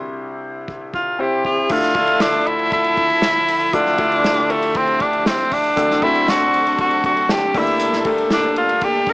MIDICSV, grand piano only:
0, 0, Header, 1, 2, 480
1, 0, Start_track
1, 0, Key_signature, -1, "minor"
1, 0, Tempo, 508518
1, 1606, Time_signature, 4, 2, 24, 8
1, 8620, End_track
2, 0, Start_track
2, 0, Title_t, "Grand piano"
2, 0, Program_c, 0, 0
2, 0, Control_c, 0, 64, 127
2, 0, Note_on_c, 0, 36, 60
2, 0, Note_on_c, 0, 48, 60
2, 0, Note_on_c, 0, 60, 74
2, 0, Note_on_c, 0, 64, 63
2, 0, Note_on_c, 0, 67, 70
2, 0, Note_on_c, 0, 72, 80
2, 210, Note_off_c, 0, 60, 0
2, 212, Note_off_c, 0, 64, 0
2, 214, Note_off_c, 0, 67, 0
2, 214, Note_off_c, 0, 72, 0
2, 1120, Note_on_c, 0, 60, 71
2, 1124, Note_on_c, 0, 64, 61
2, 1126, Note_on_c, 0, 67, 59
2, 1129, Note_on_c, 0, 72, 77
2, 1326, Note_off_c, 0, 36, 0
2, 1328, Note_off_c, 0, 48, 0
2, 1507, Note_off_c, 0, 60, 0
2, 1509, Note_off_c, 0, 64, 0
2, 1510, Note_off_c, 0, 67, 0
2, 1511, Note_off_c, 0, 72, 0
2, 1602, Note_on_c, 0, 57, 76
2, 1605, Note_on_c, 0, 50, 64
2, 1605, Note_on_c, 0, 64, 63
2, 1606, Note_on_c, 0, 38, 59
2, 1607, Note_on_c, 0, 62, 70
2, 1609, Note_on_c, 0, 65, 62
2, 1609, Note_on_c, 0, 69, 84
2, 1616, Control_c, 0, 64, 0
2, 1758, Control_c, 0, 64, 127
2, 1796, Note_off_c, 0, 57, 0
2, 1798, Note_off_c, 0, 62, 0
2, 1798, Note_off_c, 0, 64, 0
2, 1799, Note_off_c, 0, 65, 0
2, 1799, Note_off_c, 0, 69, 0
2, 1834, Note_on_c, 0, 57, 77
2, 1838, Note_on_c, 0, 62, 69
2, 1840, Note_on_c, 0, 64, 68
2, 1841, Note_on_c, 0, 65, 73
2, 1841, Note_on_c, 0, 69, 82
2, 2607, Note_off_c, 0, 57, 0
2, 2609, Note_off_c, 0, 62, 0
2, 2610, Note_off_c, 0, 64, 0
2, 2611, Note_off_c, 0, 65, 0
2, 2611, Note_off_c, 0, 69, 0
2, 3487, Note_off_c, 0, 50, 0
2, 3488, Note_off_c, 0, 38, 0
2, 3523, Note_on_c, 0, 57, 73
2, 3524, Note_on_c, 0, 38, 61
2, 3525, Note_on_c, 0, 50, 65
2, 3525, Note_on_c, 0, 62, 62
2, 3526, Note_on_c, 0, 64, 63
2, 3526, Note_on_c, 0, 65, 74
2, 3528, Note_on_c, 0, 69, 81
2, 3716, Note_off_c, 0, 57, 0
2, 3717, Note_off_c, 0, 62, 0
2, 3717, Note_off_c, 0, 64, 0
2, 3718, Note_off_c, 0, 65, 0
2, 3718, Note_off_c, 0, 69, 0
2, 3755, Note_on_c, 0, 57, 88
2, 3757, Note_on_c, 0, 64, 74
2, 3758, Note_on_c, 0, 62, 72
2, 3761, Note_on_c, 0, 65, 79
2, 3762, Note_on_c, 0, 69, 87
2, 4528, Note_off_c, 0, 57, 0
2, 4529, Note_off_c, 0, 62, 0
2, 4529, Note_off_c, 0, 64, 0
2, 4531, Note_off_c, 0, 65, 0
2, 4531, Note_off_c, 0, 69, 0
2, 5406, Note_off_c, 0, 38, 0
2, 5407, Note_off_c, 0, 50, 0
2, 5437, Note_on_c, 0, 57, 69
2, 5441, Note_on_c, 0, 60, 73
2, 5442, Note_on_c, 0, 38, 60
2, 5442, Note_on_c, 0, 62, 74
2, 5443, Note_on_c, 0, 66, 61
2, 5444, Note_on_c, 0, 50, 72
2, 5445, Note_on_c, 0, 69, 81
2, 5458, Control_c, 0, 64, 0
2, 5608, Control_c, 0, 64, 127
2, 5633, Note_off_c, 0, 57, 0
2, 5635, Note_off_c, 0, 60, 0
2, 5635, Note_off_c, 0, 62, 0
2, 5636, Note_off_c, 0, 66, 0
2, 5637, Note_off_c, 0, 69, 0
2, 5685, Note_on_c, 0, 57, 80
2, 5685, Note_on_c, 0, 62, 75
2, 5687, Note_on_c, 0, 60, 81
2, 5688, Note_on_c, 0, 66, 77
2, 5690, Note_on_c, 0, 69, 80
2, 6452, Note_off_c, 0, 57, 0
2, 6452, Note_off_c, 0, 62, 0
2, 6454, Note_off_c, 0, 60, 0
2, 6454, Note_off_c, 0, 66, 0
2, 6455, Note_off_c, 0, 69, 0
2, 7085, Note_off_c, 0, 38, 0
2, 7086, Note_off_c, 0, 50, 0
2, 7121, Note_on_c, 0, 57, 73
2, 7122, Note_on_c, 0, 58, 70
2, 7125, Note_on_c, 0, 62, 65
2, 7125, Note_on_c, 0, 67, 66
2, 7126, Note_on_c, 0, 31, 58
2, 7128, Note_on_c, 0, 43, 56
2, 7130, Note_on_c, 0, 69, 77
2, 7139, Control_c, 0, 64, 0
2, 7297, Control_c, 0, 64, 127
2, 7507, Note_off_c, 0, 57, 0
2, 7507, Note_off_c, 0, 58, 0
2, 7508, Note_off_c, 0, 62, 0
2, 7508, Note_off_c, 0, 67, 0
2, 7511, Note_off_c, 0, 69, 0
2, 7599, Note_on_c, 0, 57, 82
2, 7601, Note_on_c, 0, 58, 71
2, 7601, Note_on_c, 0, 62, 71
2, 7602, Note_on_c, 0, 67, 80
2, 7607, Note_on_c, 0, 69, 97
2, 8369, Note_off_c, 0, 57, 0
2, 8370, Note_off_c, 0, 58, 0
2, 8370, Note_off_c, 0, 62, 0
2, 8371, Note_off_c, 0, 67, 0
2, 8373, Note_off_c, 0, 69, 0
2, 8620, Note_off_c, 0, 31, 0
2, 8620, Note_off_c, 0, 43, 0
2, 8620, End_track
0, 0, End_of_file